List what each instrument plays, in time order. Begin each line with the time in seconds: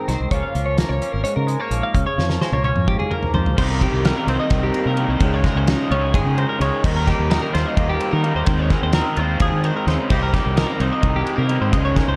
Already playing: clean electric guitar G#2 C4 D#4
0.08 fingered electric bass C2, clean electric guitar D#3 C5, snare, closed hi-hat
0.20 fingered electric bass C2
0.31 fingered electric bass C#2, clean electric guitar C#3 F3 A#3 C#4 C#5, kick, closed hi-hat
0.35 clean electric guitar F4
0.43 clean electric guitar F5
0.55 fingered electric bass C#2, clean electric guitar F3, closed hi-hat
0.66 clean electric guitar C#5
0.78 clean electric guitar A#3 A#4, snare, closed hi-hat
0.89 fingered electric bass C#2, clean electric guitar C#5
1.02 clean electric guitar C#4, closed hi-hat
1.12 fingered electric bass G#1, clean electric guitar A#4
1.24 clean electric guitar G#2 C#5, closed hi-hat
1.36 fingered electric bass C#3, clean electric guitar A#4
1.47 clean electric guitar G#3, closed hi-hat
1.60 clean electric guitar A#3 C#5
1.71 fingered electric bass A#1, clean electric guitar F3, closed hi-hat
1.83 clean electric guitar F5
1.94 fingered electric bass C#2, clean electric guitar C#3, kick, closed hi-hat
2.07 clean electric guitar C#5
2.18 fingered electric bass F2, clean electric guitar F3, snare
2.29 clean electric guitar A#4, snare
2.41 clean electric guitar G#3 C5, snare
2.52 fingered electric bass C#2, clean electric guitar A#3 C#5, high tom
2.64 clean electric guitar C#4 C#5, high tom
2.76 fingered electric bass F2, mid tom
2.87 clean electric guitar G#2 G4, kick, mid tom
2.99 clean electric guitar G#4, mid tom
3.11 clean electric guitar A#3 A#4, mid tom
3.23 floor tom
3.34 fingered electric bass F2, clean electric guitar F3 C5, floor tom
3.46 fingered electric bass C#2, floor tom
3.57 fingered electric bass C2, overdriven electric guitar C3 G3 C4 D#4, clean electric guitar C3 D#3 C5, kick, crash
3.61 clean electric guitar A#3 D#4 G4
3.70 clean electric guitar A#4
3.81 clean electric guitar D#3 G4, overdriven electric guitar C4 D#4, kick, ride
3.85 overdriven electric guitar G3
3.93 fingered electric bass C2
4.05 overdriven electric guitar C3 G3 C4 D#4, clean electric guitar A#3 A#4, snare, ride
4.17 clean electric guitar A#4
4.27 fingered electric bass C2, clean electric guitar C4 C5, overdriven electric guitar C4 D#4, ride
4.32 overdriven electric guitar G3
4.40 clean electric guitar D#4 D#5
4.50 fingered electric bass C2, clean electric guitar D#3, kick, snare, ride
4.63 clean electric guitar G4
4.74 clean electric guitar A#3, ride
4.86 fingered electric bass C3, clean electric guitar A#4
4.97 overdriven electric guitar C3 G3 C4, clean electric guitar D#3, ride
5.01 overdriven electric guitar D#4
5.08 fingered electric bass C2, clean electric guitar C5
5.20 fingered electric bass C#2, overdriven electric guitar C#3 G#3 C#4 D#4, clean electric guitar C#3, kick, ride
5.34 clean electric guitar C#5
5.43 clean electric guitar G#3 A#4, overdriven electric guitar G#3 C#4 D#4, kick, snare, ride
5.55 fingered electric bass C#2, clean electric guitar C5
5.67 overdriven electric guitar C#3 G#3 C#4 D#4, clean electric guitar D#4 A#4, snare, ride
5.90 fingered electric bass C#2, overdriven electric guitar C#4 D#4, clean electric guitar F4 C#5, ride
5.95 overdriven electric guitar G#3
6.01 clean electric guitar G#4
6.14 fingered electric bass G#1, clean electric guitar G#3 G#4, kick, ride
6.25 fingered electric bass C#3
6.38 clean electric guitar D#4 C5, ride
6.49 clean electric guitar A#4
6.59 fingered electric bass C#2, overdriven electric guitar C#3 G#3 C#4 D#4, clean electric guitar G#3 C#5, ride
6.84 fingered electric bass D#2, overdriven electric guitar D#3 G3 A#3 D#4, clean electric guitar D#3 C5, kick, crash
6.96 clean electric guitar A#4
7.06 clean electric guitar A#3 G4, overdriven electric guitar A#3 D#4, kick, snare, ride
7.11 overdriven electric guitar G3
7.19 fingered electric bass D#2
7.30 overdriven electric guitar D#3 G3 A#3 D#4, clean electric guitar D#4 A#4, snare, ride
7.42 clean electric guitar A#4
7.53 fingered electric bass D#2, overdriven electric guitar A#3 D#4, clean electric guitar F4 C5, snare, ride
7.58 overdriven electric guitar G3
7.66 clean electric guitar D#5
7.77 fingered electric bass D#2, clean electric guitar A#3, kick, ride
7.89 clean electric guitar G4
8.00 clean electric guitar C4, ride
8.11 fingered electric bass D#3, clean electric guitar D#4 A#4
8.23 overdriven electric guitar D#3 G3 A#3, clean electric guitar A#3, ride
8.27 overdriven electric guitar D#4
8.35 fingered electric bass D#2, clean electric guitar C5
8.45 fingered electric bass D#2, clean electric guitar D#3, overdriven electric guitar D#3 G#3, kick, ride
8.50 overdriven electric guitar C4 D#4
8.59 clean electric guitar C#5
8.69 clean electric guitar G#3 A#4, overdriven electric guitar D#4, kick, snare, ride
8.73 overdriven electric guitar G#3 C4
8.82 fingered electric bass D#2, clean electric guitar C5
8.93 overdriven electric guitar D#3 G#3, clean electric guitar C4 A#4, snare, ride
8.97 overdriven electric guitar C4 D#4
9.16 fingered electric bass D#2, overdriven electric guitar C4 D#4, clean electric guitar F4 C5, ride
9.22 overdriven electric guitar G#3
9.40 fingered electric bass D#2, clean electric guitar F3 G#4, kick, ride
9.51 fingered electric bass D#3
9.64 clean electric guitar D#3 C5, ride
9.77 clean electric guitar A#4
9.86 fingered electric bass D#2, clean electric guitar C#3 C5, overdriven electric guitar D#3 G#3 C4, snare, ride
9.91 overdriven electric guitar D#4
10.09 fingered electric bass C2, overdriven electric guitar C3 G3 C4 D#4, clean electric guitar C3 D#3 A#3 D#4 G4 C5, kick, crash
10.23 clean electric guitar A#4
10.33 clean electric guitar D#3 G4, overdriven electric guitar G3 C4 D#4, kick, snare, ride
10.46 fingered electric bass C2
10.55 overdriven electric guitar C3 G3 C4 D#4, clean electric guitar G#3 A#4, snare, ride
10.67 clean electric guitar A#3 A#4
10.80 fingered electric bass C2, overdriven electric guitar G3 C4 D#4, clean electric guitar D#4 C5, ride
10.93 clean electric guitar D#5
11.01 fingered electric bass C2, clean electric guitar D#3, kick, ride
11.16 clean electric guitar G4
11.25 clean electric guitar G#3, ride
11.36 fingered electric bass C3, clean electric guitar A#3 A#4
11.47 overdriven electric guitar C3 G3 C4, clean electric guitar D#3, ride
11.52 overdriven electric guitar D#4
11.61 fingered electric bass G#2, clean electric guitar C5
11.71 fingered electric bass C#2, clean electric guitar C#3 G#3 D#4 G#4, overdriven electric guitar C#3 G#3 C#4, kick, ride
11.76 overdriven electric guitar D#4
11.85 clean electric guitar C#5
11.95 clean electric guitar G#3 A#4, overdriven electric guitar C#4 D#4, kick, snare, ride
12.00 overdriven electric guitar G#3
12.08 fingered electric bass C#2, clean electric guitar C5